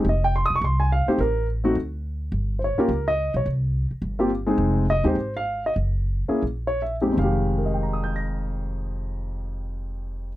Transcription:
0.05 F1
0.09 D#5
0.24 G5
0.36 C6
0.46 D#6
0.50 E1
0.56 C#6
0.61 C2 C6
0.80 G#5
0.92 F5
1.07 A3 C4 D#4 G4 C5, muted upright bass stroke
1.18 A1 A#4
1.64 A3 C4 D#4 F#4
1.75 D2
2.32 G1
2.59 C5
2.64 C#5
2.78 A#3 C#4 F4 G4 A#4, muted upright bass stroke
2.88 C#2
3.08 D#5
3.34 B1 C#5
3.46 C2
3.91 muted upright bass stroke
4.02 G1
4.19 A#3 C4 F4 G4
4.46 G#3 C4 D#4 G#4
4.58 F1
4.90 D#5
5.04 D#2 G#3 C4 D#4 G4 C5
5.15 G#1
5.37 F5
5.66 D#5
5.76 F#1
6.28 A#3 C#4 E4 G#4, muted upright bass stroke
6.43 A#1
6.67 C#5
6.82 E5
7.01 F2 G#3 C4 D#4 G4
7.12 F2 D#3
7.18 F1 G#3 F5
7.24 G4
7.58 A#4
7.66 D#5
7.74 G5
7.83 A#5
7.93 D#6
8.04 G6
8.16 A#6

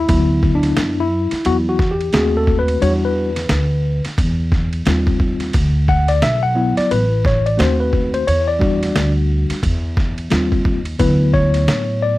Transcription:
0.08 D2 F#3 B3 E4, kick, ride
0.43 kick
0.55 D4
0.63 snare, ride
0.77 F#2, snare, hi-hat pedal, ride
1.00 E4
1.31 muted upright bass stroke, snare, ride
1.45 E2 F#3 B3 E4 F#4, ride
1.69 F#4
1.79 kick, snare
1.91 G4
2.01 ride
2.13 D#2 A3 C4 F#4 G#4, snare, hi-hat pedal, ride
2.37 A4
2.47 kick
2.59 B4
2.68 ride
2.81 E2 G3 D4 F#4 C#5, ride
3.05 B4
3.36 snare, ride
3.49 D2, snare, hi-hat pedal, ride
4.05 muted upright bass stroke, snare, ride
4.18 E2, kick, ride
4.52 kick, snare
4.73 ride
4.86 D#2 G3 C4 F4, snare, hi-hat pedal, ride
5.07 kick
5.20 kick
5.40 snare, ride
5.53 D2, kick, ride
5.88 F#5, kick
6.08 D5, snare, ride
6.22 B1 E5, snare, hi-hat pedal, ride
6.43 F#5
6.55 F#3 B3 E4
6.77 D5, muted upright bass stroke, snare, ride
6.91 A1 B4, ride
7.25 C#5, kick, snare
7.46 D5, ride
7.57 D#2 A3 C4 F#4 C5, snare, hi-hat pedal, ride
7.80 B4
7.93 kick
8.14 C5, ride
8.28 E2 C#5, ride
8.48 D5
8.59 G3 D4 F#4, kick
8.83 snare, ride
8.95 D2, snare, hi-hat pedal, ride
9.50 muted upright bass stroke, snare, ride
9.63 E2, kick, ride
9.97 kick, snare
10.18 ride
10.30 D#2 G3 C4 F4, snare, hi-hat pedal, ride
10.52 kick
10.65 kick
10.85 ride
10.99 D2 F#3 B3 E4 B4, kick, ride
11.33 C#5, kick
11.54 snare, ride
11.68 A2, snare, hi-hat pedal, ride
12.03 D5

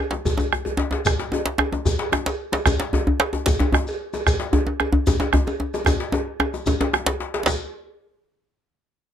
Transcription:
0.11 bombo rim, djembe slap
0.13 djembe slap, djembe tone
0.25 bombo low, cowbell, djembe bass, shekere
0.37 bombo rim, cowbell, djembe tone, djembe bass, shekere
0.53 bombo rim, djembe bass
0.65 cowbell, djembe bass
0.77 bombo rim, djembe slap, djembe tone
0.91 bombo rim, cowbell, djembe slap, djembe tone
1.05 bombo rim, bombo low, cowbell, djembe slap, djembe bass, shekere
1.20 bombo rim, djembe slap
1.32 cowbell, djembe tone
1.46 djembe slap
1.58 bombo rim, cowbell, djembe tone
1.72 djembe slap, djembe tone
1.85 bombo low, cowbell, djembe bass, shekere
1.99 bombo rim, cowbell, djembe slap
2.12 bombo rim, djembe tone
2.26 cowbell, djembe slap, shekere
2.52 bombo rim, cowbell, djembe slap, djembe tone, shekere
2.66 bombo rim, bombo low, cowbell, djembe slap, djembe tone, djembe bass, shekere
2.80 bombo rim, djembe slap
2.93 cowbell, djembe tone, djembe bass
3.07 djembe bass
3.20 bombo rim, cowbell, djembe slap
3.33 djembe tone
3.46 bombo low, cowbell, djembe slap, djembe bass, shekere
3.59 bombo rim, cowbell, djembe slap, djembe bass
3.72 bombo rim, djembe tone, djembe bass
3.87 cowbell, shekere
4.13 bombo rim, cowbell, djembe slap, djembe tone, shekere
4.26 bombo rim, bombo low, cowbell, djembe slap, djembe bass, shekere
4.40 bombo rim, djembe slap
4.53 cowbell, djembe tone, djembe bass
4.67 djembe tone
4.80 bombo rim, cowbell, djembe tone
4.93 djembe slap, djembe bass
5.07 bombo low, cowbell, djembe tone, djembe bass, shekere
5.20 bombo rim, cowbell, djembe slap, djembe tone
5.33 bombo rim, djembe tone, djembe bass
5.47 cowbell, djembe tone, shekere
5.60 djembe tone
5.74 bombo rim, cowbell, djembe slap, djembe tone, shekere
5.86 bombo rim, bombo low, cowbell, djembe tone, djembe bass, shekere
6.00 djembe slap
6.12 cowbell, djembe tone
6.14 djembe tone
6.40 bombo rim, cowbell, djembe tone
6.54 djembe tone, shekere
6.66 bombo low, cowbell, djembe slap, djembe tone, djembe bass, shekere
6.81 cowbell, djembe slap, djembe tone
6.93 bombo rim, djembe tone
7.06 cowbell, djembe slap, djembe bass
7.20 bombo rim, djembe slap
7.34 bombo rim, cowbell, djembe slap
7.46 bombo low, cowbell, djembe slap, djembe bass, shekere

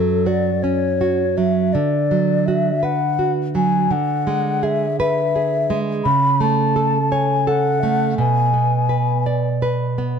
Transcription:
Already playing: F#2 F#3 A4
0.26 F#4 D5
0.62 C#4 C#5
1.01 F#4
1.37 F#3 E5
1.73 D3 D5
2.11 F#3
2.46 F#4 E5
2.83 B4 F#5
3.19 F#4
3.55 F#3 G#5
3.91 D3 F#5
4.27 G#3
4.63 G#4 E5
5.00 B4 E5
5.36 G#4
5.70 G#3
6.04 C#3 B5
6.41 A3 A5
6.76 A4
7.11 C#5 G#5
7.47 A4 F#5
7.83 A3
8.18 B2 G#5
8.54 B3
8.89 B4
9.26 D5
9.62 B4
9.98 B3

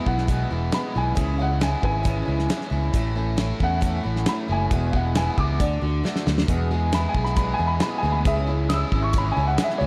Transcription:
Already playing: E2 G#3 E4
0.06 B1 E3 G#3 B3 E4 F#5, kick
0.18 snare
0.27 E2 B2 E3 G#3 B3 E4, kick, closed hi-hat
0.50 E1 E3 G#3 B3 E4
0.72 E3 G#3 B3 E4 B5, snare, closed hi-hat
0.95 B1 E3 G#3 B3 E4 G#5
1.15 C#2 C#3 E3 G#3 C#4 E4, kick, closed hi-hat
1.38 G#3 C#4 E4 F5
1.42 F#5
1.60 E3 G#3 C#4 E4 G#5, snare, closed hi-hat
1.82 G#1 G#3 C#4 E4 B4 G#5, kick
2.03 C#3 E3 G#3 C#4 E4, kick, closed hi-hat
2.25 C#2 E3 G#3 C#4 E4
2.39 snare
2.48 E3 G#3 C#4 E4, snare, closed hi-hat
2.61 snare
2.70 C#2 E3 G#3 C#4 E4
2.93 A1 A2 E3 A3 C#4 E4, kick, closed hi-hat
3.15 A3 C#4 E4
3.37 E3 A3 C#4 E4, snare, closed hi-hat
3.59 E2 A3 C#4 E4, kick
3.63 F#5
3.81 A2 E3 A3 C#4 E4, kick, closed hi-hat
4.03 A1 E3 A3 C#4 E4
4.16 snare
4.26 E3 A3 C#4 E4 B5, snare, closed hi-hat
4.48 F#1 E3 A3 C#4 E4 G#5
4.71 E1 E2 B2 E3 G#3 B3 E4, kick, closed hi-hat
4.91 G#3 B3 E4 F5 F#5, kick
4.96 E3
5.15 E3 G#3 B3 E4 G#5, snare, closed hi-hat
5.38 C#2 E3 G#3 B3 E4 D6, kick
5.60 D2 D3 A3 D4 F#4, kick, closed hi-hat
5.81 D2 D3 A3 D4 F#4
6.04 D3 A3 D4 F#4, snare
6.16 snare
6.26 D2 D3 A3 D4 F#4, snare
6.38 snare
6.48 E2 B2 E3 G#3 B3 G#4, kick, closed hi-hat
6.71 E3 G#3 B3 G#4
6.92 E3 G#3 B3 E4 G#4 B5, snare, closed hi-hat
7.09 G#5
7.14 B1 E3 G#3 B3 G#4, kick
7.24 B5, snare
7.37 E2 B2 E3 G#3 B3 G#4 B5, kick, closed hi-hat
7.54 G#5
7.58 E2 E3 G#3 B3 G#4
7.67 B5
7.80 E3 G#3 B3 G#4 B5, snare, closed hi-hat
7.98 G#5
8.03 D2 E3 G#3 B3 G#4
8.12 B5
8.25 C#2 C#3 E3 G#3 C#4 E4 G#4 E5, kick, closed hi-hat
8.47 G#3 C#4 E4
8.69 E3 G#3 C#4 E4 D#6, snare, closed hi-hat
8.73 E6
8.92 G#1 C#4 E4, kick
8.96 G#3
9.02 C#6
9.13 C#3 E3 C#4, kick, closed hi-hat
9.17 G#3 E4 B5
9.31 G#5
9.36 C#2 E3 G#3 C#4 E4
9.47 F#5
9.58 E3 G#3 C#4, snare, closed hi-hat
9.62 E4 E5
9.70 snare
9.78 C#2 E3 E4 C#5
9.83 C#4

